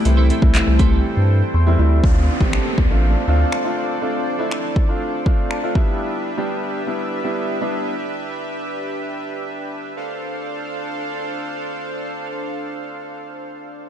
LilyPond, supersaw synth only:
\new Staff \with { instrumentName = "Supersaw synth" } { \time 4/4 \key d \dorian \tempo 4 = 121 << { <a' c'' g''>1 | <a' c'' d''>1~ | <a' c'' d''>2.~ <a' c'' d''>8 <g' b' e''>8~ | <g' b' e''>1~ |
<g' b' e''>1 | <d' a' c'' f''>1~ | <d' a' c'' f''>1 | } \\ { e'1 | d'1~ | d'1~ | d'1~ |
d'1 | r1 | r1 | } >> }